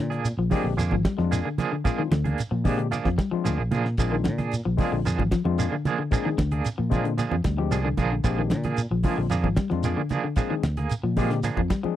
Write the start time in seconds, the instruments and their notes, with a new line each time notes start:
Already playing: fingered electric bass A#2
0.00 clean electric guitar D3
0.10 clean electric guitar A#3 D4 G#4, snare, closed hi-hat
0.25 closed hi-hat, shekere
0.38 fingered electric bass A#1, clean electric guitar F3
0.50 clean electric guitar F3 A#3 D4 G#4, tine electric piano G#3 C4 D4 G4, kick, open hi-hat, high conga, low conga, shekere
0.64 fingered electric bass A#1, clean electric guitar D3
0.77 fingered electric bass F2, clean electric guitar F3 A#3 D4 G#4, closed hi-hat, shekere
0.91 fingered electric bass G#1, clean electric guitar F3, kick, high conga
1.05 clean electric guitar G3, kick, snare, closed hi-hat, high conga, shekere
1.17 fingered electric bass F2, clean electric guitar F3, tine electric piano G#3 C4 D4 F4, snare
1.31 clean electric guitar A#3 D4 G#4, closed hi-hat, shekere
1.45 clean electric guitar D3
1.58 clean electric guitar F3 A#3 D4 G#4, closed hi-hat, high conga, low conga, shekere
1.72 clean electric guitar D3
1.84 clean electric guitar F3 A#3 D4 G#4, tine electric piano G#3 C4 D4 F4, kick, closed hi-hat, shekere
1.98 clean electric guitar D#3
2.11 fingered electric bass D2, clean electric guitar D3, snare, closed hi-hat, high conga, shekere
2.24 clean electric guitar A#3 D4 G#4, closed hi-hat, high conga, low conga
2.38 closed hi-hat, shekere
2.51 fingered electric bass A#2, clean electric guitar F3
2.64 clean electric guitar F3 A#3 D4 G#4, tine electric piano G#3 C4 D4 G4, kick, open hi-hat, high conga, low conga, shekere
2.78 clean electric guitar D3, closed hi-hat
2.91 clean electric guitar F3 A#3 D4 G#4, closed hi-hat, shekere
3.05 fingered electric bass F2, clean electric guitar F3, kick, snare, high conga
3.18 clean electric guitar G3, kick, snare, closed hi-hat, high conga, shekere
3.31 clean electric guitar F3, tine electric piano G#3 C4 D4 F4, muted fingered electric bass stroke
3.44 fingered electric bass D2, clean electric guitar F3 A#3 D4 G#4, closed hi-hat, shekere
3.58 fingered electric bass A#1, muted clean electric guitar stroke
3.71 fingered electric bass A#2, clean electric guitar F3 A#3 D4 G#4, closed hi-hat, low conga, shekere
3.85 muted clean electric guitar stroke, snare
3.97 fingered electric bass A#1, clean electric guitar F3 A#3 D4 G#4, tine electric piano G#3 C4 D4 F4, kick, closed hi-hat, shekere
4.12 clean electric guitar D#3
4.24 fingered electric bass A#2, clean electric guitar D3, snare, closed hi-hat, high conga, shekere
4.38 clean electric guitar D4 G#4, muted clean electric guitar stroke, snare, closed hi-hat, high conga, low conga
4.52 closed hi-hat, shekere
4.65 fingered electric bass A#1, clean electric guitar F3
4.78 clean electric guitar F3 A#3 D4 G#4, tine electric piano G#3 C4 D4 F4, kick, open hi-hat, high conga, low conga, shekere
4.92 fingered electric bass A#1, clean electric guitar D3
5.05 fingered electric bass F2, clean electric guitar F3 A#3 D4 G#4, closed hi-hat, shekere
5.19 fingered electric bass G#1, clean electric guitar F3, kick, high conga
5.31 clean electric guitar F3, kick, snare, closed hi-hat, high conga, shekere
5.45 fingered electric bass F2, clean electric guitar F3, tine electric piano G#3 C4 D4 F4, high conga
5.58 clean electric guitar F3 A#3 D4 G#4, closed hi-hat, shekere
5.72 clean electric guitar D3
5.85 clean electric guitar F3 A#3 D4 G#4, closed hi-hat, low conga, shekere
5.99 clean electric guitar D3
6.11 clean electric guitar F3 A#3 D4 G#4, tine electric piano G#3 C4 D4 G#4, kick, closed hi-hat, shekere
6.25 clean electric guitar D#3
6.38 fingered electric bass D2, clean electric guitar D3, kick, snare, closed hi-hat, high conga, shekere
6.51 clean electric guitar A#3 D4 G#4, closed hi-hat, low conga
6.65 snare, closed hi-hat, shekere
6.78 fingered electric bass A#2, clean electric guitar F3
6.90 clean electric guitar F3 A#3 D4 G#4, tine electric piano G#3 C4 D4 F4, kick, closed hi-hat, high conga, low conga, shekere
7.04 clean electric guitar D3, closed hi-hat
7.18 clean electric guitar F3 A#3 D4 G#4, closed hi-hat, shekere
7.31 fingered electric bass F2, clean electric guitar F3, high conga
7.44 fingered electric bass D2, clean electric guitar G3, kick, snare, closed hi-hat, high conga, shekere
7.57 clean electric guitar F3, tine electric piano G#3 C4 D4 G4
7.71 fingered electric bass C2, clean electric guitar F3 A#3 D4 G#4, closed hi-hat, shekere
7.85 clean electric guitar D3
7.97 fingered electric bass A#1, clean electric guitar F3 A#3 D4 G#4, kick, closed hi-hat, low conga, shekere
8.12 clean electric guitar D3
8.24 fingered electric bass A#1, clean electric guitar F3 A#3 D4 G#4, tine electric piano G#3 C4 D4 G4, kick, closed hi-hat, shekere
8.39 clean electric guitar D#3
8.50 fingered electric bass A#2, clean electric guitar D3, snare, closed hi-hat, high conga, shekere
8.63 clean electric guitar A#3 D4 G#4, snare, closed hi-hat, high conga, low conga
8.77 closed hi-hat, shekere
8.91 fingered electric bass A#1, clean electric guitar F3
9.03 clean electric guitar F3 A#3 D4 G#4, tine electric piano G#3 C4 D4 F4, kick, open hi-hat, high conga, low conga, shekere
9.18 fingered electric bass A#1, clean electric guitar D3
9.30 fingered electric bass F2, clean electric guitar F3 A#3 D4 G#4, closed hi-hat, shekere
9.44 fingered electric bass G#1, clean electric guitar F3, kick, high conga
9.56 clean electric guitar G3, kick, snare, closed hi-hat, high conga, shekere
9.70 fingered electric bass F2, clean electric guitar F3, tine electric piano G#3 C4 D4 F4, snare, high conga
9.83 clean electric guitar F3 A#3 D4 G#4, closed hi-hat, shekere
9.97 clean electric guitar D3
10.09 clean electric guitar F3 A#3 D4 G#4, closed hi-hat, low conga, shekere
10.24 clean electric guitar D3
10.36 clean electric guitar F3 A#3 D4 G#4, tine electric piano G#3 C4 D4 G#4, kick, closed hi-hat, shekere
10.50 clean electric guitar D#3
10.63 fingered electric bass D2, snare, closed hi-hat, high conga, shekere
10.77 clean electric guitar A#3 G#4, snare, closed hi-hat, low conga
10.90 closed hi-hat, shekere
11.03 fingered electric bass A#2, clean electric guitar F3
11.17 clean electric guitar F3 A#3 D4 G#4, tine electric piano G#3 C4 D4 G4, kick, open hi-hat, high conga, low conga, shekere
11.30 clean electric guitar D3, snare, closed hi-hat
11.43 clean electric guitar F3 A#3 D4 G#4, closed hi-hat, shekere
11.57 fingered electric bass F2, clean electric guitar F3, kick, high conga
11.70 clean electric guitar G3, kick, snare, closed hi-hat, high conga, shekere
11.83 clean electric guitar F3, tine electric piano G#3 C4 D4 G#4, muted fingered electric bass stroke, high conga